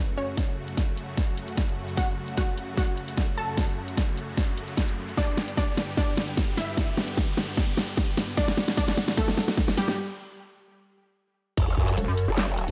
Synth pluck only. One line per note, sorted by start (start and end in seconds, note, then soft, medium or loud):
0.17 1.90 C#4 medium
0.17 1.90 C#5 medium
1.97 2.20 F#4 medium
1.97 2.20 F#5 loud
2.37 2.60 F#4 medium
2.37 2.60 F#5 medium
2.77 3.30 F#4 medium
2.77 3.30 F#5 medium
3.37 5.10 A4 medium
3.37 5.10 A5 medium
5.17 5.40 D4 medium
5.17 5.40 D5 loud
5.57 5.80 D4 medium
5.57 5.80 D5 medium
5.97 6.50 D4 medium
5.97 6.50 D5 medium
6.57 8.30 E4 medium
6.57 8.30 E5 loud
8.37 8.60 D4 medium
8.37 8.60 D5 loud
8.77 9.00 D4 medium
8.77 9.00 D5 medium
9.17 9.70 A3 medium
9.17 9.70 A4 medium
9.77 11.50 G3 medium
9.77 11.50 G4 medium